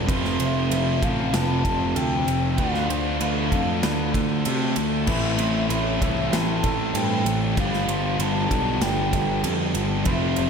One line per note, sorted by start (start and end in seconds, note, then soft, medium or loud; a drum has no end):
0.07 0.38 F1 loud
0.07 2.56 F2 loud
0.07 2.56 C3 loud
0.07 2.57 F3 loud
0.07 2.59 A3 loud
0.07 2.60 C4 loud
0.07 2.58 F4 loud
0.07 0.40 B4 medium
0.07 kick loud
0.07 ride loud
0.25 snare soft
0.40 0.69 F1 medium
0.40 0.71 C5 medium
0.40 1.05 E5 loud
0.40 ride medium
0.71 1.01 F1 medium
0.71 1.02 B4 medium
0.71 ride loud
1.02 1.32 A1 loud
1.02 2.58 C3 medium
1.02 2.57 F3 medium
1.02 1.33 A4 medium
1.02 1.36 F5 medium
1.02 kick medium
1.02 ride medium
1.06 2.59 F2 medium
1.33 1.63 F1 loud
1.33 1.65 B4 loud
1.33 1.98 A5 loud
1.33 snare loud
1.33 ride loud
1.65 1.94 F1 loud
1.65 1.96 A4 medium
1.65 kick medium
1.65 ride medium
1.96 2.25 D2 medium
1.96 2.58 A4 medium
1.96 2.59 G5 loud
1.96 ride loud
2.27 2.56 F1 loud
2.27 ride medium
2.58 2.88 D2 loud
2.58 5.06 D3 medium
2.58 5.07 A3 loud
2.58 5.07 D4 loud
2.58 5.08 F4 loud
2.58 2.90 B4 loud
2.58 3.17 F5 loud
2.58 kick loud
2.58 ride loud
2.74 snare soft
2.89 3.19 D2 medium
2.89 3.21 C5 medium
2.89 ride medium
3.21 3.50 D2 loud
3.21 3.51 B4 medium
3.21 4.11 F5 medium
3.21 ride loud
3.51 3.81 F2 medium
3.51 5.07 A3 medium
3.51 5.07 D4 medium
3.51 3.83 A4 medium
3.51 kick medium
3.51 ride medium
3.56 5.07 D3 medium
3.83 4.13 D2 loud
3.83 4.14 B4 loud
3.83 snare loud
3.83 ride loud
4.14 4.44 D2 medium
4.14 4.45 A4 medium
4.14 kick medium
4.14 ride medium
4.45 4.75 C3 medium
4.45 5.07 A4 medium
4.45 ride loud
4.76 5.06 D2 medium
4.76 ride medium
5.07 5.37 A1 loud
5.07 7.55 A2 loud
5.07 7.56 E3 medium
5.07 7.56 A3 medium
5.07 7.56 C4 loud
5.07 5.38 B4 loud
5.07 5.66 E5 loud
5.07 kick loud
5.07 crash loud
5.11 7.57 E4 loud
5.38 5.68 A1 medium
5.38 5.69 C5 medium
5.38 ride medium
5.69 5.99 A1 loud
5.69 6.01 B4 medium
5.69 6.35 E5 medium
5.69 ride loud
6.01 6.31 C2 medium
6.01 7.57 A2 medium
6.01 7.56 E3 medium
6.01 7.55 A3 medium
6.01 6.32 A4 medium
6.01 kick medium
6.01 ride medium
6.32 6.62 A1 loud
6.32 6.63 B4 loud
6.32 6.98 A5 loud
6.32 snare loud
6.32 ride loud
6.63 6.93 A1 medium
6.63 6.94 A4 medium
6.63 kick medium
6.63 ride medium
6.94 7.24 G2 medium
6.94 7.57 A4 medium
6.94 7.58 G5 loud
6.94 ride loud
7.25 7.55 A1 medium
7.25 ride medium
7.56 7.87 G1 loud
7.56 10.04 G2 medium
7.56 10.05 D3 medium
7.56 10.06 F3 loud
7.56 10.06 G3 loud
7.56 10.06 B3 medium
7.56 10.06 D4 loud
7.56 10.06 G4 loud
7.56 7.88 B4 loud
7.56 8.17 F5 loud
7.56 kick loud
7.56 ride loud
7.74 snare soft
7.88 8.18 G1 loud
7.88 8.20 C6 medium
7.88 ride medium
8.19 8.49 G1 medium
8.19 8.51 B4 medium
8.19 8.84 A5 loud
8.19 ride loud
8.49 8.80 B1 medium
8.49 10.04 G2 medium
8.49 10.05 D3 medium
8.49 10.04 G3 medium
8.49 8.82 A4 medium
8.49 kick medium
8.49 ride medium
8.81 9.11 G1 loud
8.81 9.13 B4 loud
8.81 9.76 G5 loud
8.81 snare loud
8.81 ride loud
9.13 9.43 G1 loud
9.13 9.43 A4 medium
9.13 kick medium
9.13 ride medium
9.44 9.73 F2 medium
9.44 10.07 A4 medium
9.44 ride loud
9.75 10.04 G1 loud
9.75 ride medium
10.05 10.36 F1 loud
10.05 10.50 F2 medium
10.05 10.50 C3 medium
10.05 10.50 F3 medium
10.05 10.50 A3 medium
10.05 10.50 C4 loud
10.05 10.50 F4 medium
10.05 10.37 B4 loud
10.05 kick loud
10.05 ride loud
10.12 10.50 E5 loud
10.36 10.50 F1 medium
10.36 10.50 C5 medium
10.36 ride medium